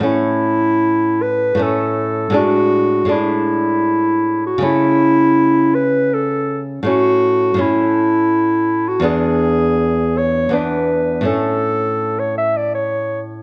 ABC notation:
X:1
M:3/4
L:1/16
Q:1/4=80
K:A
V:1 name="Clarinet"
E6 B2 A4 | F4 E6- E F | E6 B2 A3 z | F4 E6- E F |
G6 c2 B4 | A4- A c e d c3 z |]
V:2 name="Nylon-string guitar"
[A,,A,C]8 [A,,A,C]4 | [A,,G,D]4 [A,,G,D]8 | [C,A,C]12 | [A,,A,C]4 [A,,A,C]8 |
[E,,B,D]8 [E,,B,D]4 | [A,,A,C]12 |]